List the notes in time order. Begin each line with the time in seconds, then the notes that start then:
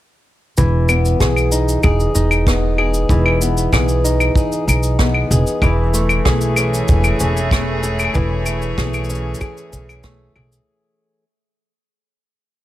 0.57 E1 E3, kick, cabasa
0.89 B3, cabasa, claves
1.05 cabasa
1.20 B1 G#4, kick, cross-stick, cabasa
1.36 cabasa, claves
1.52 D#4, cabasa
1.69 cabasa
1.83 E1 G#4, kick, cabasa, claves
2.00 cabasa
2.15 E1 D#4, cabasa
2.31 cabasa, claves
2.47 B3, kick, cross-stick, cabasa
2.78 G#4, claves
2.94 cabasa
3.09 E1 E3, kick, cabasa
3.26 claves
3.28 claves
3.30 claves
3.35 claves
3.37 claves
3.39 B3, cabasa, claves
3.57 cabasa
3.73 B1 G#4, kick, cross-stick, cabasa, claves
3.88 cabasa
4.04 D#4, cabasa
4.20 cabasa, claves
4.36 G#4, kick, cabasa
4.52 cabasa
4.68 B1 D#4, cabasa, claves
4.83 cabasa
4.99 B3, kick, cross-stick, cabasa
5.14 claves
5.31 E1 G#4, cabasa
5.47 cabasa
5.62 E1 E3, kick, cabasa, claves
5.73 A3
5.94 A3, cabasa
6.09 cabasa, claves
6.25 B1 G#4, kick, cross-stick, cabasa
6.41 cabasa
6.46 G#4
6.56 C#4 C#5, cabasa, claves
6.74 cabasa
6.88 E1 G#4, kick, cabasa
7.04 cabasa, claves
7.20 E1 C#4, cabasa
7.37 cabasa
7.51 A3, kick, cross-stick, cabasa, claves
7.83 G#4, cabasa
7.99 cabasa, claves
8.05 claves
8.10 claves
8.14 E1 E3, kick, cabasa, claves
8.25 claves
8.46 A3, cabasa, claves
8.62 cabasa
8.78 B1 G#4, kick, cross-stick, cabasa
8.94 cabasa, claves
9.04 cabasa
9.10 C#4, cabasa
9.15 cabasa
9.35 cabasa
9.41 G#4, kick, cabasa, claves
9.57 cabasa
9.72 B1 C#4, cabasa
9.89 cabasa, claves
10.04 A3, kick, cross-stick, cabasa
10.36 B1 G#4, claves
10.52 cabasa